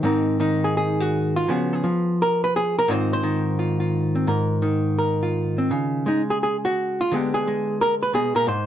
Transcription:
0.03 G#2 D#3 C4 D#4 A#4
0.40 D#3 D#4
0.64 G#4
0.77 G#4
1.00 F#4
1.36 F4
1.48 C#3 F3 B3 F#4
1.73 G#4
1.84 F3
2.22 A#4
2.44 B4
2.56 G#4
2.79 A#4
2.88 G#2 D#3 C4 F4 C5
3.13 C5
3.23 D#3
3.59 F4
3.80 F4
4.15 C4
4.27 G#2 A#4
4.62 D#3
4.99 A#4
5.23 F4
5.58 C4
5.71 C#3
6.06 G#3 D#4
6.30 G#4
6.43 G#4
6.65 F#4
7.01 F4
7.12 D3 G#3 B3 G4
7.34 G#4
7.47 G#3
7.81 A#4
8.03 B4
8.13 B2 G#4
8.35 A#2 A#4
8.47 G#2 C5

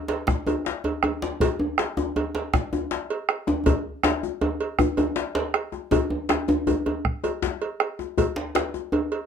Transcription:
0.08 cowbell, djembe slap
0.27 bombo rim, bombo low, djembe slap, djembe bass
0.47 cowbell, djembe tone
0.65 bombo rim, djembe slap
0.84 cowbell, djembe tone
1.03 bombo rim, cowbell, djembe tone
1.22 djembe slap, djembe tone
1.40 bombo low, cowbell, djembe slap, djembe bass
1.59 djembe tone
1.78 bombo rim, cowbell, djembe slap
1.97 djembe tone
2.16 cowbell, djembe tone
2.35 cowbell, djembe slap
2.53 bombo rim, bombo low, djembe slap, djembe bass
2.73 djembe tone
2.91 bombo rim, djembe slap
3.10 cowbell
3.29 bombo rim, cowbell
3.47 djembe slap, djembe tone
3.66 bombo low, cowbell, djembe slap, djembe tone, djembe bass
4.03 bombo rim, cowbell, djembe slap, djembe tone
4.23 djembe tone
4.41 cowbell, djembe slap, djembe tone
4.60 cowbell
4.79 bombo rim, bombo low, djembe tone, djembe bass
4.97 cowbell, djembe tone
5.16 djembe slap
5.35 cowbell, djembe slap
5.54 bombo rim, cowbell, djembe slap
5.72 bombo rim, djembe tone
5.91 bombo low, cowbell, djembe tone, djembe bass
6.10 djembe tone
6.29 bombo rim, cowbell, djembe slap, djembe tone
6.48 djembe tone
6.67 bombo rim, cowbell, djembe tone, djembe bass
6.86 cowbell, djembe tone
7.05 bombo rim, bombo low
7.24 cowbell, djembe tone
7.42 djembe slap, djembe bass
7.62 cowbell
7.80 bombo rim, cowbell
7.99 bombo rim, djembe tone
8.18 bombo low, cowbell, djembe bass
8.36 djembe slap
8.55 bombo rim, cowbell, djembe slap
8.74 djembe tone
8.92 bombo rim, cowbell, djembe tone
9.12 cowbell

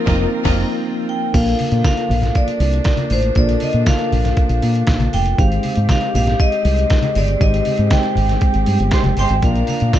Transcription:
Already playing: F3 A#3 C4 D#4 F4 A#4 A#5
0.06 F1 F3 A#3 C4 D#4 F4 A#4 D#5 A#5, kick, snare
0.44 F1 F3 A#3 C4 D#4 F4 A#4 D#5 A#5, kick, snare, crash
1.09 G5
1.33 A#1 F3 A#3 D4 F4 A4 A#4 F5, kick, closed hi-hat, crash, muted conga
1.48 closed hi-hat
1.59 open hi-hat, high conga
1.72 A#2, closed hi-hat
1.84 A#3 D4 F4 A4 A#4 F5, kick, snare, closed hi-hat, muted conga, high conga
1.97 closed hi-hat
2.10 A#1, open hi-hat, low conga
2.22 snare, closed hi-hat, low conga
2.35 D5, kick, closed hi-hat
2.47 closed hi-hat, muted conga
2.60 C2, open hi-hat
2.74 closed hi-hat
2.84 kick, snare, closed hi-hat, muted conga
2.97 closed hi-hat, high conga
3.10 A1 C5, open hi-hat, low conga
3.23 closed hi-hat
3.35 A#1 A#3 D4 F4 A4 A#4 D5, kick, closed hi-hat, muted conga
3.49 closed hi-hat, muted conga
3.60 D#5, open hi-hat, high conga
3.73 A#2, closed hi-hat
3.86 A#3 D4 F4 A4 A#4 F5, kick, snare, closed hi-hat, muted conga, high conga
3.99 closed hi-hat
4.12 A#1, open hi-hat, low conga
4.24 snare, closed hi-hat, low conga
4.37 kick, closed hi-hat
4.49 A#1, closed hi-hat
4.62 A#2, open hi-hat
4.75 closed hi-hat
4.87 A#1, kick, snare, closed hi-hat, muted conga
4.99 closed hi-hat, muted conga, high conga
5.13 F1 G5, open hi-hat, low conga
5.26 closed hi-hat
5.38 G#1 G#3 C4 D#4 G4 C5 F5, kick, closed hi-hat
5.52 closed hi-hat
5.63 open hi-hat, high conga
5.75 G#2, closed hi-hat
5.88 G#3 C4 D#4 G4 D#5 F5, kick, snare, closed hi-hat, muted conga, high conga
6.01 closed hi-hat, muted conga
6.14 A#1 F5, open hi-hat, low conga
6.27 snare, closed hi-hat, low conga
6.39 D#5, kick, closed hi-hat, muted conga
6.52 closed hi-hat
6.65 C2, open hi-hat
6.79 closed hi-hat
6.90 kick, snare, closed hi-hat
7.02 closed hi-hat, muted conga, high conga
7.15 G1 D5, open hi-hat, low conga
7.28 closed hi-hat
7.39 G#1 G#3 C4 D#4 G4 C5 D#5, kick, closed hi-hat, muted conga
7.53 closed hi-hat, muted conga
7.65 open hi-hat, high conga
7.78 G#2, closed hi-hat
7.90 G#3 C4 D#4 G4 C5 G5, kick, snare, closed hi-hat, muted conga, high conga
8.03 closed hi-hat, muted conga
8.15 G#1, open hi-hat, low conga
8.28 snare, closed hi-hat, low conga
8.40 kick, closed hi-hat, muted conga
8.53 G#1, closed hi-hat, muted conga
8.66 G2, open hi-hat
8.80 G1, closed hi-hat
8.91 G#3 G4 C5, kick, snare, closed hi-hat, muted conga
9.03 F1, closed hi-hat, muted conga, high conga
9.17 G1 G#3 G4 C5 G5, open hi-hat, low conga
9.29 G#1, closed hi-hat
9.42 A#1 F3 A#3 D4 F4 A#4 D5 F5 A#5, kick, closed hi-hat, muted conga
9.55 closed hi-hat, muted conga
9.67 F5, open hi-hat, high conga
9.80 A#2, closed hi-hat
9.92 A#3 D4 F4 A#4 D5 F5, kick, snare, closed hi-hat, high conga

